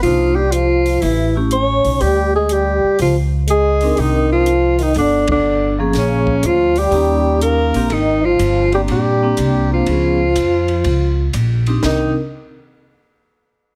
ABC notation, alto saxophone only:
X:1
M:4/4
L:1/8
Q:"Swing" 1/4=122
K:Cm
V:1 name="Alto saxophone"
F G F2 =E z ^c2 | G A G2 F z A2 | E F2 E D D2 z | _D2 F G3 B2 |
E F2 G G3 F- | F6 z2 | E z6 z |]